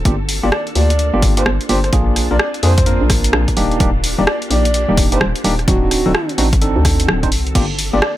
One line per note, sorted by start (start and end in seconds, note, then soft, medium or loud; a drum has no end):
0.00 1.89 A4 medium
0.05 0.41 G1 loud
0.05 1.91 A#3 medium
0.05 0.15 A#3 medium
0.05 5.64 D4 medium
0.05 0.15 D4 medium
0.05 5.64 F4 medium
0.05 0.15 F4 medium
0.05 0.15 G4 medium
0.05 kick loud
0.05 closed hi-hat medium
0.29 open hi-hat loud
0.43 0.51 G1 medium
0.43 0.49 A#3 medium
0.43 0.49 D4 medium
0.43 0.49 F4 medium
0.43 0.49 G4 medium
0.43 0.49 D5 medium
0.52 0.62 D5 medium
0.52 cross-stick loud
0.67 closed hi-hat soft
0.75 1.11 D2 medium
0.75 0.91 A#3 medium
0.75 0.91 D4 medium
0.75 0.91 F4 medium
0.75 0.91 G4 medium
0.75 1.22 D5 medium
0.75 open hi-hat medium
0.90 closed hi-hat medium
0.99 closed hi-hat medium
1.14 1.44 G1 loud
1.14 1.34 A#3 medium
1.14 1.34 D4 medium
1.14 1.34 F4 medium
1.14 1.34 G4 medium
1.22 kick loud
1.22 open hi-hat medium
1.37 1.43 A#3 medium
1.37 1.43 D4 medium
1.37 1.43 F4 medium
1.37 1.43 G4 medium
1.37 1.51 C5 medium
1.37 closed hi-hat medium
1.46 1.59 G1 loud
1.46 cross-stick loud
1.61 closed hi-hat soft
1.69 1.91 G1 medium
1.69 1.79 A#3 medium
1.69 1.79 D4 medium
1.69 1.79 F4 medium
1.69 1.79 G4 loud
1.69 1.79 C5 medium
1.69 open hi-hat medium
1.84 1.90 C5 medium
1.84 cross-stick soft
1.84 closed hi-hat soft
1.93 2.28 A#1 loud
1.93 2.27 A#3 medium
1.93 3.55 C4 medium
1.93 2.27 D4 medium
1.93 2.27 F4 medium
1.93 3.55 G#4 medium
1.93 2.27 G#4 medium
1.93 kick loud
1.93 closed hi-hat medium
2.16 cross-stick soft
2.16 open hi-hat loud
2.31 2.39 A#1 medium
2.31 2.36 A#3 medium
2.31 2.36 D4 medium
2.31 2.37 F4 medium
2.31 2.36 A#4 medium
2.31 2.36 D5 medium
2.39 2.49 D5 medium
2.39 cross-stick loud
2.54 closed hi-hat soft
2.63 2.99 F2 medium
2.63 2.72 A#3 medium
2.63 2.72 D4 medium
2.63 2.72 F4 medium
2.63 2.72 G#4 loud
2.63 3.01 C5 medium
2.63 open hi-hat medium
2.78 kick loud
2.78 closed hi-hat medium
2.86 3.55 A#3 medium
2.86 3.55 D4 medium
2.86 3.55 F4 medium
2.86 3.55 A#4 medium
2.86 closed hi-hat medium
3.01 3.32 A#1 loud
3.10 kick loud
3.10 cross-stick medium
3.10 open hi-hat loud
3.24 closed hi-hat medium
3.33 3.46 A#1 loud
3.33 cross-stick loud
3.48 kick medium
3.48 closed hi-hat medium
3.57 3.78 D#1 medium
3.57 3.78 A#3 medium
3.57 5.66 A#3 medium
3.57 3.78 D4 medium
3.57 3.78 D#4 medium
3.57 5.66 G4 medium
3.57 3.78 G4 medium
3.57 open hi-hat medium
3.71 closed hi-hat soft
3.80 4.16 D#1 loud
3.80 3.90 A#3 medium
3.80 3.90 D4 medium
3.80 3.90 D#4 medium
3.80 3.90 G4 medium
3.80 kick loud
3.80 closed hi-hat medium
4.04 open hi-hat loud
4.18 4.26 D#1 medium
4.18 4.24 A#3 medium
4.18 4.24 D4 medium
4.18 4.24 D#4 medium
4.18 4.24 G4 medium
4.18 4.24 D5 medium
4.27 4.36 D5 medium
4.27 cross-stick loud
4.42 closed hi-hat soft
4.50 4.86 A#1 medium
4.50 4.65 A#3 medium
4.50 4.65 D4 medium
4.50 4.65 D#4 medium
4.50 4.65 G4 medium
4.50 4.97 D5 medium
4.50 open hi-hat medium
4.65 closed hi-hat medium
4.74 closed hi-hat medium
4.89 5.19 D#1 loud
4.89 5.09 A#3 medium
4.89 5.09 D4 medium
4.89 5.09 D#4 medium
4.89 5.09 G4 medium
4.97 kick loud
4.97 open hi-hat loud
5.12 5.18 A#3 medium
5.12 5.18 D4 medium
5.12 5.18 D#4 medium
5.12 5.18 G4 medium
5.12 5.26 C5 medium
5.12 closed hi-hat medium
5.21 5.34 D#1 loud
5.21 cross-stick loud
5.36 closed hi-hat medium
5.44 5.66 D#1 medium
5.44 5.54 A#3 medium
5.44 5.54 D4 medium
5.44 5.54 D#4 medium
5.44 5.54 G4 loud
5.44 open hi-hat medium
5.59 cross-stick soft
5.59 closed hi-hat soft
5.68 6.03 D1 loud
5.68 7.53 D#3 medium
5.68 7.53 C4 medium
5.68 6.02 C4 medium
5.68 6.02 D4 medium
5.68 6.02 D#4 medium
5.68 7.53 F#4 medium
5.68 6.02 F#4 medium
5.68 5.77 F#4 medium
5.68 8.17 A4 medium
5.68 kick loud
5.68 closed hi-hat medium
5.82 5.88 F#4 medium
5.91 6.29 F#4 medium
5.91 cross-stick soft
5.91 open hi-hat loud
6.06 6.14 D1 medium
6.06 6.11 C4 medium
6.06 6.11 D4 medium
6.06 6.11 D#4 medium
6.06 6.11 A4 medium
6.15 cross-stick loud
6.29 closed hi-hat soft
6.38 6.74 A1 medium
6.38 6.47 C4 medium
6.38 6.47 D4 medium
6.38 6.47 D#4 medium
6.38 6.47 F#4 loud
6.38 open hi-hat loud
6.53 kick loud
6.53 closed hi-hat medium
6.62 7.20 C4 medium
6.62 7.20 D4 medium
6.62 7.20 D#4 medium
6.62 7.20 A4 medium
6.62 closed hi-hat medium
6.76 7.07 D2 loud
6.85 kick loud
6.85 cross-stick medium
6.85 open hi-hat loud
7.00 closed hi-hat medium
7.08 7.33 D1 loud
7.08 cross-stick loud
7.23 7.29 C4 medium
7.23 7.29 D4 medium
7.23 7.29 D#4 medium
7.23 7.29 C5 medium
7.23 kick medium
7.23 closed hi-hat medium
7.32 7.53 C2 medium
7.32 open hi-hat medium
7.47 closed hi-hat soft
7.55 7.91 G1 loud
7.55 8.17 A#3 medium
7.55 7.65 A#3 medium
7.55 8.17 D4 medium
7.55 7.65 D4 medium
7.55 8.17 F4 medium
7.55 7.65 F4 medium
7.55 7.65 G4 medium
7.55 kick loud
7.55 closed hi-hat medium
7.55 crash medium
7.79 open hi-hat loud
7.93 8.01 G1 medium
7.93 7.99 A#3 medium
7.93 7.99 D4 medium
7.93 7.99 F4 medium
7.93 7.99 G4 loud
7.93 7.99 D5 medium
8.02 8.12 D5 medium
8.02 cross-stick loud